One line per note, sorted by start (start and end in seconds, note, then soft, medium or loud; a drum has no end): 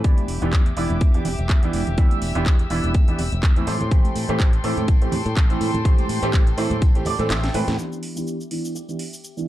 0.04 0.14 E2 medium
0.04 0.39 B3 medium
0.04 0.39 D4 medium
0.04 0.23 E4 medium
0.04 0.23 G4 loud
0.04 3.64 G4 medium
0.04 0.39 G4 medium
0.04 0.23 D5 loud
0.04 3.64 E5 medium
0.04 1.96 D6 medium
0.04 kick loud
0.04 closed hi-hat medium
0.04 tambourine soft
0.18 closed hi-hat soft
0.18 tambourine soft
0.18 high conga medium
0.28 0.38 E1 medium
0.28 open hi-hat medium
0.28 tambourine medium
0.42 0.54 E1 medium
0.42 0.60 E3 loud
0.42 0.60 B3 medium
0.42 0.60 D4 medium
0.42 0.53 E4 medium
0.42 0.60 G4 loud
0.42 0.53 G4 medium
0.42 0.53 D5 medium
0.42 closed hi-hat soft
0.42 tambourine soft
0.52 0.71 E2 medium
0.52 kick loud
0.52 clap loud
0.52 closed hi-hat medium
0.52 tambourine soft
0.52 high conga medium
0.66 muted clean electric guitar stroke soft
0.66 closed hi-hat soft
0.66 tambourine soft
0.76 0.86 E1 medium
0.76 0.96 E3 medium
0.76 0.96 B3 medium
0.76 0.96 D4 medium
0.76 0.96 E4 medium
0.76 0.97 E4 medium
0.76 0.96 G4 medium
0.76 0.96 D5 medium
0.76 open hi-hat medium
0.76 tambourine medium
0.90 0.98 E1 medium
0.90 closed hi-hat soft
0.90 tambourine soft
0.90 high conga loud
0.90 low conga medium
1.01 1.19 E2 loud
1.01 kick loud
1.01 closed hi-hat medium
1.01 tambourine soft
1.14 1.25 E3 medium
1.14 1.25 B3 medium
1.14 1.25 D4 medium
1.14 1.25 G4 medium
1.14 muted clean electric guitar stroke loud
1.14 closed hi-hat soft
1.14 tambourine soft
1.25 1.35 E1 medium
1.25 muted clean electric guitar stroke medium
1.25 open hi-hat loud
1.25 tambourine medium
1.25 low conga medium
1.38 1.46 E1 loud
1.38 muted clean electric guitar stroke soft
1.38 closed hi-hat soft
1.38 tambourine soft
1.38 high conga medium
1.49 1.68 E2 medium
1.49 kick loud
1.49 clap loud
1.49 closed hi-hat medium
1.63 1.81 E3 medium
1.63 1.81 B3 medium
1.63 1.81 D4 medium
1.63 1.81 E4 medium
1.63 closed hi-hat soft
1.73 1.83 E1 medium
1.73 open hi-hat medium
1.73 tambourine medium
1.73 high conga medium
1.87 1.95 E1 medium
1.87 closed hi-hat soft
1.87 tambourine soft
1.87 low conga medium
1.98 2.07 E2 medium
1.98 2.32 E3 medium
1.98 2.32 B3 medium
1.98 2.32 D4 medium
1.98 2.17 E4 loud
1.98 2.17 G4 medium
1.98 2.33 G4 medium
1.98 2.17 E5 loud
1.98 3.66 E6 medium
1.98 kick loud
1.98 closed hi-hat medium
1.98 tambourine soft
2.11 closed hi-hat soft
2.11 tambourine soft
2.11 high conga medium
2.22 2.32 E1 medium
2.22 open hi-hat loud
2.22 tambourine loud
2.35 2.48 E1 medium
2.35 2.53 E3 loud
2.35 2.53 B3 medium
2.35 2.54 D4 medium
2.35 2.46 E4 medium
2.35 2.54 G4 loud
2.35 2.46 G4 medium
2.35 2.46 D5 medium
2.35 closed hi-hat soft
2.35 tambourine soft
2.46 2.64 E2 medium
2.46 kick medium
2.46 clap loud
2.46 closed hi-hat medium
2.46 tambourine soft
2.46 high conga medium
2.59 muted clean electric guitar stroke soft
2.59 closed hi-hat soft
2.59 tambourine soft
2.70 2.80 E1 medium
2.70 2.90 E3 medium
2.70 2.90 B3 medium
2.70 2.90 D4 medium
2.70 2.89 E4 medium
2.70 2.90 E4 medium
2.70 2.89 G4 medium
2.70 2.89 D5 medium
2.70 open hi-hat medium
2.70 tambourine medium
2.84 2.92 E1 medium
2.84 closed hi-hat soft
2.84 tambourine soft
2.84 high conga medium
2.84 low conga medium
2.94 3.13 E2 loud
2.94 kick loud
2.94 closed hi-hat medium
2.94 tambourine soft
3.08 3.18 E3 medium
3.08 3.19 B3 medium
3.08 3.19 D4 medium
3.08 3.19 G4 medium
3.08 muted clean electric guitar stroke loud
3.08 closed hi-hat soft
3.08 tambourine soft
3.18 3.28 E1 medium
3.18 muted clean electric guitar stroke medium
3.18 open hi-hat loud
3.18 tambourine medium
3.18 low conga medium
3.32 3.40 E1 medium
3.32 muted clean electric guitar stroke soft
3.32 closed hi-hat soft
3.32 tambourine soft
3.32 high conga medium
3.43 3.61 E2 medium
3.43 kick loud
3.43 clap loud
3.43 closed hi-hat medium
3.43 tambourine soft
3.56 3.74 E3 medium
3.56 3.75 A3 medium
3.56 3.75 C4 medium
3.56 3.75 E4 medium
3.56 closed hi-hat soft
3.56 tambourine soft
3.67 3.77 A2 medium
3.67 4.16 G4 medium
3.67 7.74 A4 medium
3.67 4.16 A4 medium
3.67 4.16 C5 medium
3.67 7.74 G5 medium
3.67 7.74 C6 medium
3.67 open hi-hat medium
3.67 tambourine medium
3.67 high conga medium
3.80 3.88 A2 medium
3.80 closed hi-hat soft
3.80 tambourine soft
3.80 low conga medium
3.91 4.01 A1 loud
3.91 4.26 E3 medium
3.91 4.26 A3 medium
3.91 4.26 C4 medium
3.91 4.26 G4 medium
3.91 kick loud
3.91 closed hi-hat medium
3.91 tambourine medium
4.04 closed hi-hat soft
4.04 tambourine soft
4.04 high conga medium
4.16 4.25 A2 medium
4.16 open hi-hat loud
4.16 tambourine medium
4.29 4.41 A2 medium
4.29 4.47 E3 loud
4.29 4.47 A3 medium
4.29 4.47 C4 medium
4.29 4.40 G4 medium
4.29 4.47 G4 loud
4.29 4.40 A4 medium
4.29 4.40 C5 medium
4.29 closed hi-hat soft
4.39 4.58 A1 medium
4.39 kick loud
4.39 clap loud
4.39 closed hi-hat medium
4.39 tambourine soft
4.39 high conga medium
4.53 muted clean electric guitar stroke soft
4.53 closed hi-hat soft
4.53 tambourine soft
4.64 4.74 A2 medium
4.64 4.83 E3 medium
4.64 4.83 A3 medium
4.64 4.83 C4 medium
4.64 4.84 E4 medium
4.64 4.83 G4 medium
4.64 4.83 A4 medium
4.64 4.83 C5 medium
4.64 open hi-hat medium
4.64 tambourine medium
4.77 4.85 A2 medium
4.77 closed hi-hat soft
4.77 tambourine soft
4.77 high conga medium
4.77 low conga medium
4.88 5.06 A1 loud
4.88 kick loud
4.88 closed hi-hat medium
4.88 tambourine soft
5.01 5.12 E3 medium
5.01 5.12 A3 medium
5.01 5.12 C4 medium
5.01 5.12 G4 medium
5.01 muted clean electric guitar stroke loud
5.01 closed hi-hat soft
5.01 tambourine soft
5.12 5.22 A2 medium
5.12 muted clean electric guitar stroke medium
5.12 open hi-hat loud
5.12 tambourine medium
5.12 low conga loud
5.25 5.33 A2 loud
5.25 muted clean electric guitar stroke soft
5.25 closed hi-hat soft
5.25 tambourine soft
5.25 high conga medium
5.37 5.55 A1 medium
5.37 kick loud
5.37 clap loud
5.37 closed hi-hat medium
5.37 tambourine medium
5.50 5.68 E3 medium
5.50 5.68 A3 medium
5.50 5.68 C4 medium
5.50 5.68 E4 medium
5.50 closed hi-hat soft
5.50 tambourine soft
5.61 5.70 A2 medium
5.61 open hi-hat medium
5.61 tambourine loud
5.61 high conga medium
5.74 5.82 A2 medium
5.74 closed hi-hat soft
5.74 tambourine soft
5.74 low conga medium
5.85 5.95 A1 loud
5.85 6.19 E3 medium
5.85 6.20 A3 medium
5.85 6.20 C4 medium
5.85 6.04 G4 loud
5.85 6.20 G4 medium
5.85 6.04 A4 medium
5.85 6.04 C5 loud
5.85 kick loud
5.85 closed hi-hat medium
5.85 tambourine soft
5.98 closed hi-hat soft
5.98 tambourine soft
5.98 high conga medium
6.09 6.19 A2 medium
6.09 open hi-hat loud
6.09 tambourine loud
6.22 6.35 A2 medium
6.22 6.41 E3 loud
6.22 6.41 A3 medium
6.22 6.41 C4 medium
6.22 6.41 G4 loud
6.22 6.34 G4 medium
6.22 6.33 A4 medium
6.22 6.33 C5 medium
6.22 closed hi-hat soft
6.22 tambourine soft
6.33 6.52 A1 medium
6.33 kick loud
6.33 clap loud
6.33 closed hi-hat medium
6.33 tambourine medium
6.33 high conga medium
6.47 muted clean electric guitar stroke soft
6.47 closed hi-hat soft
6.47 tambourine soft
6.57 6.67 A2 medium
6.57 6.77 E3 medium
6.57 6.77 A3 medium
6.57 6.77 C4 medium
6.57 6.77 E4 medium
6.57 6.76 G4 medium
6.57 6.76 A4 medium
6.57 6.77 C5 loud
6.57 open hi-hat medium
6.57 tambourine medium
6.70 6.79 A2 medium
6.70 closed hi-hat soft
6.70 tambourine soft
6.70 high conga medium
6.70 low conga medium
6.82 7.00 A1 loud
6.82 kick loud
6.82 closed hi-hat medium
6.82 tambourine medium
6.95 7.05 E3 medium
6.95 7.06 A3 medium
6.95 7.06 C4 medium
6.95 7.06 G4 medium
6.95 muted clean electric guitar stroke medium
6.95 closed hi-hat soft
6.95 tambourine soft
7.05 7.15 A2 medium
7.05 7.29 D5 medium
7.05 muted clean electric guitar stroke loud
7.05 open hi-hat loud
7.05 tambourine loud
7.05 low conga medium
7.19 7.31 A2 medium
7.19 7.30 E3 medium
7.19 7.30 A3 medium
7.19 7.30 C4 medium
7.19 7.30 A4 loud
7.19 muted clean electric guitar stroke soft
7.19 closed hi-hat soft
7.19 tambourine soft
7.19 high conga medium
7.30 7.48 A1 loud
7.30 7.53 E5 medium
7.30 snare medium
7.30 clap loud
7.30 closed hi-hat medium
7.30 tambourine medium
7.44 snare medium
7.44 closed hi-hat soft
7.44 tambourine soft
7.54 7.64 A2 loud
7.54 7.73 E3 medium
7.54 7.74 A3 medium
7.54 7.74 C4 medium
7.54 7.74 B4 loud
7.54 7.77 G5 medium
7.54 open hi-hat medium
7.54 tambourine loud
7.54 high conga medium
7.67 7.75 A2 loud
7.67 snare medium
7.67 closed hi-hat soft
7.67 tambourine soft
7.67 low conga medium
7.78 8.13 E3 medium
7.78 8.13 D4 medium
7.78 7.97 E4 medium
7.78 7.97 G4 medium
7.78 9.48 G4 medium
7.78 8.13 G4 medium
7.78 7.97 D5 loud
7.78 9.48 E5 medium
7.78 9.48 D6 medium
7.78 cabasa medium
7.92 cabasa soft
8.03 open hi-hat medium
8.16 8.34 E3 medium
8.16 8.34 B3 medium
8.16 8.34 D4 medium
8.16 8.34 E4 medium
8.16 8.34 G4 loud
8.16 8.34 G4 medium
8.16 8.34 B4 medium
8.16 cabasa medium
8.27 cabasa soft
8.41 cabasa soft
8.51 8.70 E3 medium
8.51 8.70 B3 medium
8.51 8.71 D4 medium
8.51 8.71 E4 medium
8.51 muted clean electric guitar stroke soft
8.51 open hi-hat medium
8.65 cabasa medium
8.75 8.89 E4 medium
8.75 8.89 G4 medium
8.75 8.89 D5 medium
8.75 cabasa soft
8.88 8.99 E3 medium
8.88 8.99 B3 medium
8.88 8.99 D4 medium
8.88 8.99 G4 medium
8.88 cabasa soft
8.99 muted clean electric guitar stroke soft
8.99 open hi-hat medium
9.13 cabasa medium
9.24 cabasa soft
9.37 9.48 E3 medium
9.37 9.48 B3 medium
9.37 9.48 D4 medium
9.37 9.48 E4 medium
9.37 cabasa soft